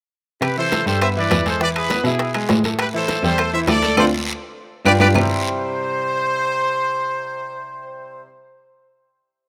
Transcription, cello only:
0.42 0.83 C3 medium
0.86 1.28 G2 medium
1.31 1.99 E2 medium
2.04 2.46 B2 medium
2.50 3.18 A2 medium
3.23 3.64 E2 medium
3.67 3.95 D2 medium
3.97 4.08 D2 medium
4.85 4.96 G2 medium
4.99 5.11 G2 medium
5.15 8.23 C3 medium

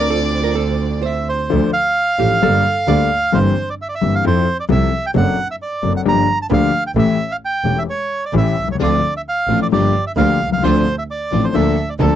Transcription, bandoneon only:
1.05 1.28 E5 medium
1.29 1.71 C5 medium
1.73 3.39 F5 loud
3.34 3.69 C5 medium
3.70 3.75 D5 medium
3.82 3.88 E5 medium
3.89 3.95 D5 medium
3.95 4.15 E5 medium
4.15 4.25 F5 medium
4.27 4.57 C5 medium
4.60 4.65 D5 medium
4.72 5.06 E5 loud
5.06 5.11 G5 loud
5.17 5.48 F#5 loud
5.51 5.56 E5 medium
5.62 5.93 D5 medium
5.97 6.01 F#5 loud
6.08 6.39 A#5 loud
6.42 6.47 A5 medium
6.53 6.84 F5 loud
6.87 6.91 G5 medium
6.99 7.33 E5 loud
7.32 7.36 F5 medium
7.45 7.79 G5 loud
7.79 7.83 E5 medium
7.90 8.25 C#5 medium
8.25 8.35 D5 medium
8.38 8.68 E5 loud
8.72 8.76 C#5 medium
8.83 9.14 D5 loud
9.17 9.22 E5 medium
9.29 9.60 F5 loud
9.62 9.67 D5 medium
9.73 10.05 D5 medium
10.07 10.12 E5 medium
10.18 10.50 F5 loud
10.53 10.63 F5 medium
10.64 10.96 C5 loud
10.98 11.04 E5 medium
11.11 11.45 D5 medium
11.44 11.55 C5 medium
11.54 11.89 E5 medium
11.89 11.94 D5 medium
12.02 12.15 A4 loud

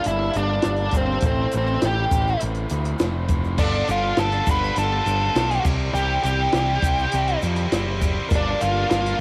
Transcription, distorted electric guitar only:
3.58 3.87 B3 loud
3.58 3.88 D4 loud
3.58 3.89 G4 loud
3.88 4.16 B3 medium
3.88 4.18 D4 loud
3.88 4.19 G4 loud
4.18 4.45 B3 medium
4.18 4.46 D4 medium
4.18 4.47 G4 loud
4.47 4.75 B3 loud
4.47 4.75 D4 loud
4.47 4.77 G4 loud
4.76 5.05 B3 medium
4.76 5.06 D4 medium
4.76 5.07 G4 loud
5.06 5.34 B3 medium
5.06 5.35 D4 loud
5.06 5.37 G4 medium
5.35 5.63 B3 loud
5.35 5.63 D4 loud
5.35 5.66 G4 loud
5.65 5.93 E3 loud
5.65 5.94 C4 loud
5.65 5.94 E4 loud
5.65 5.96 G4 loud
5.94 6.23 E3 loud
5.94 6.24 C4 loud
5.94 6.25 E4 loud
5.94 6.25 G4 loud
6.24 6.53 E3 medium
6.24 6.54 C4 loud
6.24 6.54 E4 medium
6.24 6.56 G4 loud
6.54 6.81 E3 loud
6.54 6.82 C4 medium
6.54 6.83 E4 medium
6.54 6.84 G4 medium
6.82 7.11 E3 medium
6.82 7.12 C4 loud
6.82 7.13 E4 loud
6.82 7.13 G4 loud
7.13 7.40 E3 medium
7.13 7.41 C4 medium
7.13 7.42 E4 medium
7.13 7.42 G4 loud
7.42 7.70 E3 medium
7.42 7.71 C4 loud
7.42 7.72 E4 loud
7.42 7.72 G4 loud
7.71 7.99 E3 loud
7.71 8.00 C4 loud
7.71 8.01 E4 loud
7.71 8.02 G4 loud
8.00 8.28 E3 medium
8.00 8.28 C4 loud
8.00 8.29 E4 loud
8.00 8.29 G4 loud
8.30 8.59 G3 loud
8.30 8.60 A#3 loud
8.30 8.60 D4 loud
8.60 8.88 G3 medium
8.60 8.88 A#3 medium
8.60 8.89 D4 loud
8.89 9.17 G3 medium
8.89 9.18 A#3 medium
8.89 9.19 D4 loud

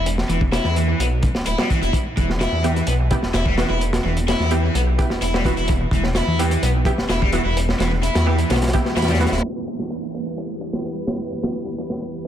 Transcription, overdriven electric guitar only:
0.29 0.41 E3 medium
0.53 0.75 E4 loud
0.76 0.99 E3 medium
1.00 1.05 B3 medium
1.47 1.58 E4 loud
1.59 1.67 G3 medium
1.71 1.79 E3 medium
1.82 1.93 E4 loud
2.17 2.29 E3 medium
2.41 2.63 E4 loud
2.64 2.86 E3 medium
2.87 2.92 B3 medium
3.34 3.45 E4 loud
3.46 3.54 G3 medium
3.58 3.66 E3 medium
3.70 3.80 E4 loud
4.05 4.16 E3 medium
4.28 4.50 E4 loud
4.52 4.74 E3 medium
4.75 4.80 B3 medium
5.22 5.33 E4 loud
5.34 5.42 G3 medium
5.45 5.54 E3 medium
5.58 5.68 E4 loud
5.93 6.04 E3 medium
6.16 6.38 E4 loud
6.39 6.61 E3 medium
6.63 6.68 B3 medium
7.10 7.20 E4 loud
7.21 7.29 G3 medium
7.33 7.41 E3 loud
7.45 7.56 E4 loud
7.80 7.91 E3 medium
8.03 8.25 E4 loud
8.27 8.49 E3 medium
8.50 8.55 B3 medium
8.97 9.07 E4 loud
9.09 9.17 G3 medium
9.20 9.29 E3 loud
9.32 9.43 E4 loud

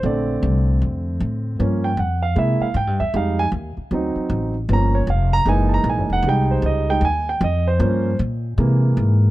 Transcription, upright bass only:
0.03 0.41 A#1 medium
0.43 0.80 C2 medium
0.82 1.19 F2 medium
1.20 1.58 A2 medium
1.60 1.97 G2 medium
1.97 2.35 F2 medium
2.36 2.59 C3 medium
2.60 muted upright bass stroke soft
2.74 2.87 G#2 medium
2.87 3.00 G2 medium
3.00 3.13 E2 medium
3.14 3.51 F2 medium
3.52 3.76 D#2 medium
3.77 muted upright bass stroke soft
3.91 4.15 D2 medium
4.15 muted upright bass stroke soft
4.30 4.68 A1 medium
4.69 5.06 G1 medium
5.07 5.45 F1 medium
5.46 5.83 F#1 medium
5.84 5.98 A#1 medium
5.98 6.09 F#1 medium
6.10 6.22 E1 medium
6.23 6.62 C2 medium
6.62 7.00 C#2 medium
7.01 7.40 D#2 medium
7.41 7.79 F2 loud
7.80 8.18 G2 medium
8.19 8.57 A#2 medium
8.58 8.96 C3 medium
8.97 9.30 G#2 loud

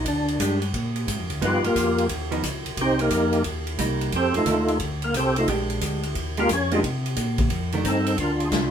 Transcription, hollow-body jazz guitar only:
0.40 0.60 G#3 soft
0.40 0.60 D4 medium
0.40 0.61 G4 medium
1.41 1.61 F3 medium
1.41 1.62 B3 medium
1.41 1.62 D#4 medium
2.31 2.42 F3 medium
2.31 2.42 B3 medium
2.31 2.43 D#4 medium
3.79 4.13 G3 medium
3.79 4.13 A#3 medium
3.79 4.13 D#4 medium
4.46 4.66 D#3 medium
4.46 4.67 A3 medium
4.46 4.67 D4 medium
5.49 6.00 G#3 medium
5.49 6.00 D4 medium
5.49 6.00 G4 medium
6.38 6.48 G#3 medium
6.38 6.49 D4 medium
6.38 6.49 G4 medium
6.72 6.82 A#3 medium
6.72 6.83 D#4 medium
6.72 6.83 G4 medium
7.74 7.84 D#3 medium
7.74 7.85 A3 medium
7.74 7.85 D4 medium

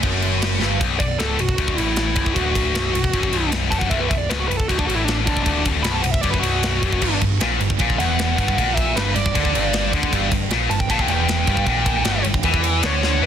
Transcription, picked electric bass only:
0.03 0.57 F#1 medium
0.61 0.79 G1 medium
0.81 0.99 B0 loud
1.00 1.18 B0 medium
1.19 1.37 C#1 loud
1.39 1.57 B0 medium
1.58 1.76 D1 loud
1.77 2.13 A1 loud
2.16 2.34 B0 medium
2.36 2.72 D1 medium
2.74 2.92 B0 medium
2.94 3.12 B0 medium
3.13 3.31 F#1 loud
3.32 3.69 B0 loud
3.72 3.90 F#1 medium
3.91 4.09 B0 loud
4.11 4.29 B0 medium
4.30 4.48 C#1 loud
4.50 4.67 B0 medium
4.70 4.87 D1 loud
4.87 5.24 A1 loud
5.28 5.45 B0 loud
5.46 5.82 D1 loud
5.84 6.03 B0 loud
6.04 6.22 B0 medium
6.24 6.42 F#1 medium
6.43 6.79 B0 loud
6.83 7.01 F#1 medium
7.03 7.20 G1 loud
7.22 7.39 G1 medium
7.41 7.59 A#1 loud
7.60 7.78 G1 medium
7.80 7.97 A#1 loud
8.00 8.35 E1 loud
8.38 8.56 G1 loud
8.58 8.94 A#1 medium
8.96 9.14 G1 loud
9.16 9.34 G1 medium
9.36 9.53 D2 loud
9.54 9.90 G1 loud
9.93 10.11 D2 loud
10.13 10.31 G1 loud
10.32 10.49 G1 medium
10.50 10.68 A#1 loud
10.69 10.88 G1 medium
10.90 11.08 A#1 medium
11.08 11.45 E1 loud
11.48 11.66 G1 loud
11.66 12.03 A#1 loud
12.05 12.23 G1 loud
12.24 12.43 G1 medium
12.44 12.80 E2 loud
12.83 13.19 D2 loud
13.22 13.26 E1 medium

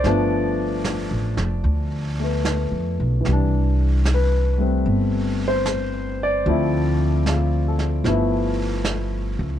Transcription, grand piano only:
0.00 0.83 D5 medium
0.05 3.26 F3 soft
0.05 2.18 A3 soft
0.05 2.22 B3 medium
0.05 3.27 D4 medium
2.20 3.26 A3 soft
2.20 3.28 B3 soft
3.21 6.44 E3 soft
3.21 4.56 G3 soft
3.32 6.50 D4 soft
4.14 5.42 B4 medium
4.58 6.46 G3 soft
4.58 6.46 A3 soft
4.58 6.47 C4 soft
5.48 6.21 C5 medium
6.23 7.23 D5 medium
6.47 8.03 F3 medium
6.47 8.04 A3 soft
6.47 8.06 C4 soft
6.47 8.07 E4 medium
7.28 7.90 F4 soft
7.68 8.22 A4 soft
8.04 9.59 F3 soft
8.04 9.59 A3 soft
8.04 9.59 B3 soft
8.09 9.59 E4 medium

